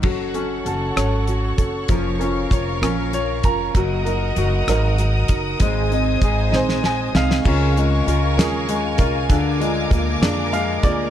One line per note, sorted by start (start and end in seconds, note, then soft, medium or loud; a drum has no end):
0.02 0.62 F#1 medium
0.02 0.34 F#3 medium
0.02 1.86 F#3 medium
0.02 0.34 C#4 medium
0.02 0.34 F#4 medium
0.02 1.87 A4 medium
0.02 0.33 A4 medium
0.02 3.71 C#5 soft
0.02 1.87 F#5 medium
0.02 3.71 C#6 medium
0.02 kick medium
0.02 crash medium
0.34 1.55 C#4 soft
0.34 0.66 C#4 soft
0.34 0.66 F#4 soft
0.34 0.65 A4 soft
0.34 closed hi-hat soft
0.66 0.95 F#1 medium
0.66 0.96 F#3 medium
0.66 0.96 C#4 medium
0.66 0.95 F#4 medium
0.66 1.86 A4 soft
0.66 0.95 A4 medium
0.66 closed hi-hat medium
0.96 1.55 G#1 medium
0.96 1.26 F#3 soft
0.96 1.27 C#4 soft
0.96 1.27 F#4 medium
0.96 1.27 A4 medium
0.96 1.86 C#5 soft
0.96 cross-stick medium
0.96 closed hi-hat medium
1.27 1.58 F#3 medium
1.27 1.59 C#4 medium
1.27 1.58 F#4 medium
1.27 1.56 A4 medium
1.27 closed hi-hat soft
1.58 1.87 F#1 medium
1.58 1.89 C#4 soft
1.58 1.90 F#4 soft
1.58 1.89 A4 medium
1.58 kick medium
1.58 closed hi-hat medium
1.87 2.47 F1 medium
1.87 3.71 F3 medium
1.87 2.20 F3 medium
1.87 2.21 A#3 medium
1.87 2.21 C#4 medium
1.87 2.19 F4 medium
1.87 3.72 A#4 medium
1.87 2.18 A#4 medium
1.87 3.72 F5 medium
1.87 kick medium
1.87 closed hi-hat medium
2.19 2.82 C#4 soft
2.19 2.50 C#4 soft
2.19 2.51 F4 medium
2.19 2.51 A#4 medium
2.19 closed hi-hat soft
2.50 2.80 F1 medium
2.50 2.82 A#3 medium
2.50 2.82 C#4 medium
2.50 2.81 F4 medium
2.50 2.81 A#4 medium
2.50 3.12 C#5 soft
2.50 kick medium
2.50 closed hi-hat medium
2.82 3.40 A#1 medium
2.82 3.14 F3 medium
2.82 3.11 A#3 medium
2.82 3.12 C#4 medium
2.82 3.73 C#4 soft
2.82 3.13 F4 medium
2.82 3.13 A#4 medium
2.82 cross-stick medium
2.82 closed hi-hat medium
3.12 3.44 A#3 medium
3.12 3.44 C#4 medium
3.12 3.44 F4 medium
3.12 3.43 A#4 medium
3.12 3.42 C#5 medium
3.12 closed hi-hat medium
3.43 3.73 F1 medium
3.43 3.75 C#4 soft
3.43 3.76 F4 medium
3.43 3.75 A#4 medium
3.43 3.73 A#5 medium
3.43 kick medium
3.43 closed hi-hat medium
3.73 4.33 F#1 medium
3.73 4.06 F#3 medium
3.73 5.57 F#3 medium
3.73 4.06 D#4 medium
3.73 4.06 F#4 medium
3.73 5.57 A#4 medium
3.73 4.04 A#4 medium
3.73 5.57 D#5 medium
3.73 5.57 F#5 medium
3.73 7.41 D#6 medium
3.73 kick medium
3.73 closed hi-hat medium
4.05 5.26 D#4 soft
4.05 4.35 D#4 soft
4.05 4.37 F#4 soft
4.05 4.36 A#4 medium
4.05 closed hi-hat soft
4.36 4.66 F#1 medium
4.36 4.67 F#3 medium
4.36 4.68 D#4 medium
4.36 5.57 F#4 soft
4.36 4.67 F#4 medium
4.36 4.66 A#4 medium
4.36 closed hi-hat medium
4.67 5.25 G#1 medium
4.67 4.97 F#3 medium
4.67 4.98 D#4 medium
4.67 4.98 F#4 medium
4.67 4.98 A#4 medium
4.67 5.58 A#4 medium
4.67 cross-stick medium
4.67 closed hi-hat medium
4.98 5.29 F#3 medium
4.98 5.29 D#4 medium
4.98 5.29 F#4 medium
4.98 5.27 A#4 medium
4.98 closed hi-hat medium
5.28 5.59 D#4 soft
5.28 5.60 F#4 soft
5.28 5.60 A#4 medium
5.28 kick medium
5.28 closed hi-hat medium
5.59 6.18 G#1 medium
5.59 5.91 G#2 medium
5.59 5.91 D#3 medium
5.59 5.91 G#3 medium
5.59 7.42 G#3 medium
5.59 5.90 C4 medium
5.59 5.90 D#4 medium
5.59 7.43 C5 medium
5.59 5.88 C5 medium
5.59 7.43 D#5 medium
5.59 7.43 G#5 medium
5.59 kick medium
5.59 closed hi-hat medium
5.89 6.19 G#3 soft
5.89 6.20 C4 medium
5.89 6.21 D#4 medium
5.89 7.12 D#4 soft
5.89 6.21 C5 medium
5.89 closed hi-hat soft
6.20 6.51 G#1 medium
6.20 6.51 G#3 medium
6.20 6.51 C4 medium
6.20 6.50 D#4 medium
6.20 6.50 C5 medium
6.20 kick medium
6.20 closed hi-hat medium
6.24 7.43 G#4 soft
6.51 7.11 A#1 medium
6.51 6.84 G#2 medium
6.51 6.83 D#3 medium
6.51 6.80 G#3 medium
6.51 6.81 C4 medium
6.51 6.82 D#4 medium
6.51 6.83 C5 medium
6.51 snare medium
6.56 7.44 C5 medium
6.69 snare medium
6.81 7.13 G#3 medium
6.81 7.14 C4 medium
6.81 7.13 D#4 medium
6.81 7.12 C5 medium
6.81 snare medium
6.86 7.13 G#5 medium
7.13 7.43 C2 medium
7.13 7.43 G#3 soft
7.13 7.45 C4 soft
7.13 7.45 D#4 medium
7.13 7.44 C5 medium
7.13 7.44 F5 medium
7.13 snare medium
7.31 snare medium
7.44 8.03 C#2 medium
7.44 7.75 C#3 medium
7.44 7.76 G#3 medium
7.44 7.76 C#4 medium
7.44 9.27 C#4 medium
7.44 7.76 F4 loud
7.44 9.28 A#4 medium
7.44 7.74 A#4 medium
7.44 11.10 F5 medium
7.44 11.10 G#5 medium
7.44 9.28 C#6 medium
7.44 kick loud
7.44 crash loud
7.76 8.67 G#3 soft
7.76 8.06 C#4 soft
7.76 8.07 F4 medium
7.76 8.06 A#4 medium
7.76 closed hi-hat medium
8.06 8.36 C#2 medium
8.06 8.37 G#3 medium
8.06 8.37 C#4 medium
8.06 8.37 F4 medium
8.06 8.99 F4 soft
8.06 8.36 A#4 medium
8.06 closed hi-hat medium
8.37 8.95 D#2 medium
8.37 8.69 C#3 medium
8.37 8.66 G#3 medium
8.37 8.67 C#4 medium
8.37 8.68 F4 medium
8.37 9.27 G#4 medium
8.37 8.68 A#4 medium
8.37 snare loud
8.37 closed hi-hat medium
8.67 8.98 G#3 medium
8.67 9.28 G#3 medium
8.67 8.99 C#4 medium
8.67 8.98 F4 medium
8.67 8.97 A#4 medium
8.67 closed hi-hat medium
8.98 9.28 C2 medium
8.98 9.30 C#4 soft
8.98 9.29 F4 medium
8.98 9.29 A#4 medium
8.98 kick medium
8.98 closed hi-hat medium
9.29 9.87 D2 medium
9.29 9.60 D3 medium
9.29 11.10 D3 medium
9.29 9.60 A#3 medium
9.29 9.61 D4 medium
9.29 9.60 F4 medium
9.29 9.58 G#4 medium
9.29 11.10 A#4 medium
9.29 11.10 D6 medium
9.29 kick loud
9.29 closed hi-hat medium
9.60 10.51 G#3 medium
9.60 9.91 D4 soft
9.60 9.92 F4 medium
9.60 9.91 G#4 medium
9.60 closed hi-hat medium
9.91 10.20 D2 loud
9.91 10.22 A#3 medium
9.91 10.82 A#3 soft
9.91 10.22 D4 medium
9.91 10.21 F4 medium
9.91 10.21 G#4 medium
9.91 kick loud
9.91 closed hi-hat medium
10.21 10.79 F2 medium
10.21 10.54 D3 medium
10.21 10.51 A#3 medium
10.21 11.10 D4 medium
10.21 10.52 D4 medium
10.21 10.53 F4 medium
10.21 10.53 G#4 medium
10.21 snare loud
10.21 closed hi-hat medium
10.52 11.10 G#3 medium
10.52 10.83 A#3 medium
10.52 10.84 D4 medium
10.52 10.84 F4 medium
10.52 10.83 G#4 medium
10.52 10.81 F5 medium
10.52 closed hi-hat medium
10.83 11.10 D2 medium
10.83 11.10 A#3 medium
10.83 11.10 D4 medium
10.83 11.10 F4 medium
10.83 11.10 G#4 medium
10.83 11.10 D5 medium
10.83 kick medium
10.83 closed hi-hat medium